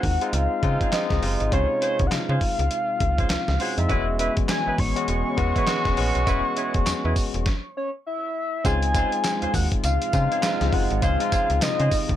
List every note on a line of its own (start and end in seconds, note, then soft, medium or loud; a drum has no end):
0.00 0.18 D#2 medium
0.00 0.21 G#3 medium
0.00 0.22 C4 medium
0.00 0.22 D#4 medium
0.00 0.22 F4 medium
0.00 0.36 F#5 medium
0.00 kick loud
0.00 open hi-hat medium
0.21 0.53 G#3 medium
0.21 0.53 C4 medium
0.21 0.53 D#4 medium
0.21 0.53 F4 medium
0.21 closed hi-hat medium
0.33 0.48 C#2 loud
0.33 0.95 F5 loud
0.33 closed hi-hat medium
0.62 0.78 C#3 medium
0.62 0.86 G#3 medium
0.62 0.86 C4 medium
0.62 0.86 D#4 medium
0.62 0.86 F4 medium
0.62 kick loud
0.62 closed hi-hat medium
0.80 0.91 C#4 medium
0.80 0.91 F4 medium
0.80 0.92 G#4 medium
0.80 0.92 C5 medium
0.80 kick medium
0.80 closed hi-hat medium
0.93 1.16 G#3 medium
0.93 1.16 C4 medium
0.93 1.16 D#4 medium
0.93 1.16 F4 medium
0.93 1.52 D#5 medium
0.93 snare loud
0.93 clap medium
0.93 closed hi-hat medium
1.10 1.20 C#2 medium
1.10 kick medium
1.10 snare medium
1.22 1.37 F#1 medium
1.22 2.08 C3 medium
1.22 2.08 G#3 medium
1.22 2.09 D#4 medium
1.22 2.09 F4 medium
1.22 open hi-hat medium
1.40 1.50 G#1 medium
1.40 closed hi-hat soft
1.51 1.67 C#2 loud
1.51 1.68 C#4 medium
1.51 1.68 F4 medium
1.51 1.68 G#4 medium
1.51 1.68 C5 medium
1.51 2.08 C#5 loud
1.51 kick loud
1.51 closed hi-hat medium
1.81 1.98 C#4 medium
1.81 1.98 F4 medium
1.81 1.98 G#4 medium
1.81 1.98 C5 medium
1.81 closed hi-hat medium
1.99 2.09 C#2 medium
1.99 kick loud
1.99 closed hi-hat medium
2.07 2.14 F#5 medium
2.12 2.19 C#3 medium
2.12 3.63 F5 loud
2.12 snare loud
2.12 clap loud
2.12 closed hi-hat medium
2.29 2.39 C#3 loud
2.29 2.40 C#4 medium
2.29 2.40 F4 medium
2.29 2.40 G#4 medium
2.29 2.40 C5 medium
2.41 kick medium
2.41 open hi-hat medium
2.59 2.69 C#2 medium
2.59 closed hi-hat medium
2.71 closed hi-hat medium
3.00 3.25 C#2 medium
3.00 kick loud
3.00 closed hi-hat medium
3.18 3.29 C#4 medium
3.18 3.29 F4 medium
3.18 3.29 G#4 medium
3.18 3.29 C5 medium
3.18 kick loud
3.18 closed hi-hat medium
3.30 3.37 C#2 soft
3.30 snare loud
3.30 clap loud
3.30 closed hi-hat medium
3.48 3.58 C#2 medium
3.48 snare medium
3.59 3.76 C#4 medium
3.59 3.76 F4 medium
3.59 3.76 G#4 medium
3.59 3.76 C5 medium
3.59 3.78 F#5 loud
3.59 open hi-hat medium
3.78 3.88 F2 medium
3.78 3.86 G#3 medium
3.78 3.86 C4 medium
3.78 3.86 D#4 medium
3.78 3.87 F4 medium
3.78 4.17 E5 loud
3.78 closed hi-hat soft
3.89 4.29 E1 loud
3.89 7.43 E3 medium
3.89 4.67 G#3 medium
3.89 4.67 B3 medium
3.89 7.43 B3 medium
3.89 4.06 C#4 medium
3.89 4.67 C#4 medium
3.89 7.43 C#4 medium
3.89 4.06 E4 medium
3.89 4.67 F#4 medium
3.89 4.06 G#4 medium
3.89 7.43 G#4 medium
3.89 4.06 B4 loud
3.89 kick loud
3.89 closed hi-hat medium
4.19 4.35 C#4 medium
4.19 4.35 E4 medium
4.19 4.36 G#4 medium
4.19 4.36 B4 medium
4.19 4.33 E5 loud
4.19 closed hi-hat medium
4.37 kick loud
4.37 closed hi-hat medium
4.49 4.81 G#5 loud
4.49 snare loud
4.49 clap loud
4.49 closed hi-hat medium
4.66 4.72 G#1 soft
4.66 4.77 C#4 medium
4.66 4.78 E4 medium
4.66 4.78 G#4 medium
4.66 4.78 B4 medium
4.78 4.93 G#1 medium
4.78 7.76 C#6 loud
4.78 kick medium
4.78 open hi-hat medium
4.96 5.28 G#3 medium
4.96 5.28 B3 medium
4.96 5.28 C#4 medium
4.96 5.28 F#4 medium
4.96 closed hi-hat medium
5.08 5.23 E1 loud
5.08 closed hi-hat medium
5.37 5.53 E2 medium
5.37 5.61 G#3 medium
5.37 5.61 B3 medium
5.37 5.61 C#4 medium
5.37 5.61 F#4 loud
5.37 kick loud
5.37 closed hi-hat medium
5.55 5.67 C#4 medium
5.55 5.67 E4 medium
5.55 5.67 G#4 medium
5.55 5.67 B4 medium
5.55 kick loud
5.55 closed hi-hat medium
5.67 5.90 G#3 medium
5.67 5.91 B3 medium
5.67 5.91 C#4 medium
5.67 5.91 F#4 loud
5.67 snare loud
5.67 clap loud
5.67 closed hi-hat medium
5.85 5.95 E1 loud
5.85 kick medium
5.85 snare medium
5.97 6.12 A#1 loud
5.97 6.83 G#3 medium
5.97 6.83 B3 medium
5.97 6.84 C#4 medium
5.97 6.84 F#4 loud
5.97 open hi-hat medium
6.15 6.25 B1 medium
6.15 closed hi-hat soft
6.26 6.42 E1 loud
6.26 6.43 C#4 medium
6.26 6.43 E4 medium
6.26 6.43 G#4 medium
6.26 6.44 B4 loud
6.26 kick loud
6.26 closed hi-hat medium
6.26 tambourine medium
6.56 6.73 C#4 medium
6.56 6.73 E4 medium
6.56 6.73 G#4 medium
6.56 6.73 B4 medium
6.56 closed hi-hat medium
6.74 6.85 E1 medium
6.74 kick loud
6.74 closed hi-hat medium
6.86 6.94 E2 medium
6.86 snare loud
6.86 clap medium
6.86 closed hi-hat medium
6.86 tambourine loud
7.04 7.14 E2 loud
7.04 7.15 C#4 medium
7.04 7.15 E4 medium
7.04 7.15 G#4 medium
7.04 7.15 B4 medium
7.16 kick loud
7.16 open hi-hat medium
7.16 tambourine medium
7.34 7.44 E1 medium
7.34 closed hi-hat medium
7.46 kick loud
7.46 snare medium
7.77 7.90 C#5 loud
8.07 8.67 E5 loud
8.64 9.05 C#2 loud
8.64 12.16 C3 medium
8.64 8.88 G#3 medium
8.64 12.16 G#3 medium
8.64 8.88 C4 medium
8.64 8.81 C#4 medium
8.64 8.88 D#4 medium
8.64 8.81 F4 medium
8.64 12.16 F4 medium
8.64 8.88 F4 medium
8.64 8.81 G#4 medium
8.64 8.81 C5 medium
8.64 9.54 G#5 loud
8.64 kick loud
8.64 closed hi-hat medium
8.64 tambourine medium
8.82 closed hi-hat medium
8.94 9.80 G#3 medium
8.94 9.81 C4 medium
8.94 9.11 C#4 medium
8.94 9.81 D#4 medium
8.94 9.11 F4 medium
8.94 9.81 F4 medium
8.94 9.11 G#4 medium
8.94 9.11 C5 medium
8.94 kick loud
8.94 closed hi-hat medium
8.94 tambourine medium
9.12 closed hi-hat medium
9.24 snare loud
9.24 clap medium
9.24 closed hi-hat medium
9.24 tambourine loud
9.42 9.47 D#2 soft
9.42 9.53 C#4 medium
9.42 9.53 F4 medium
9.42 9.53 G#4 medium
9.42 9.53 C5 medium
9.42 closed hi-hat medium
9.54 9.69 D#2 loud
9.54 9.68 F#5 medium
9.54 kick medium
9.54 open hi-hat medium
9.54 tambourine medium
9.72 kick medium
9.72 closed hi-hat medium
9.84 9.99 C#2 loud
9.84 10.75 F5 loud
9.84 closed hi-hat medium
9.84 tambourine medium
10.02 closed hi-hat medium
10.13 10.28 C#3 loud
10.13 10.36 G#3 medium
10.13 10.36 C4 medium
10.13 10.37 D#4 medium
10.13 10.37 F4 medium
10.13 kick loud
10.13 closed hi-hat medium
10.13 tambourine medium
10.31 10.42 C#4 medium
10.31 10.42 F4 medium
10.31 10.42 G#4 medium
10.31 10.42 C5 medium
10.31 closed hi-hat medium
10.42 10.97 G#3 medium
10.42 10.98 C4 medium
10.42 10.98 D#4 medium
10.42 10.98 F4 medium
10.42 snare loud
10.42 clap medium
10.42 closed hi-hat medium
10.42 tambourine medium
10.61 10.71 C#2 medium
10.61 snare medium
10.61 closed hi-hat soft
10.73 10.88 F#1 loud
10.73 10.98 F#5 loud
10.73 kick loud
10.73 open hi-hat medium
10.90 11.01 G#1 loud
10.90 closed hi-hat soft
10.98 11.19 C#4 medium
10.98 11.04 F#5 medium
11.02 11.17 C#2 loud
11.02 11.19 F4 medium
11.02 11.19 G#4 medium
11.02 11.19 C5 loud
11.02 11.62 F5 loud
11.02 kick loud
11.02 closed hi-hat medium
11.02 tambourine medium
11.20 12.05 G#3 medium
11.20 12.05 C4 medium
11.20 12.05 D#4 medium
11.20 12.05 F4 medium
11.20 closed hi-hat medium
11.32 11.48 C#4 medium
11.32 11.48 F4 medium
11.32 11.48 G#4 medium
11.32 11.49 C5 medium
11.32 kick loud
11.32 closed hi-hat medium
11.32 tambourine medium
11.50 11.60 C#2 medium
11.50 closed hi-hat medium
11.62 11.69 C#3 medium
11.62 12.16 D#5 loud
11.62 snare loud
11.62 clap loud
11.62 closed hi-hat medium
11.62 tambourine loud
11.79 11.90 C#3 loud
11.79 11.90 C#4 medium
11.79 11.90 F4 medium
11.79 11.90 G#4 medium
11.79 11.91 C5 medium
11.79 closed hi-hat medium
11.91 kick loud
11.91 open hi-hat medium
11.91 tambourine medium
12.09 12.16 C#2 medium
12.09 kick medium
12.09 closed hi-hat medium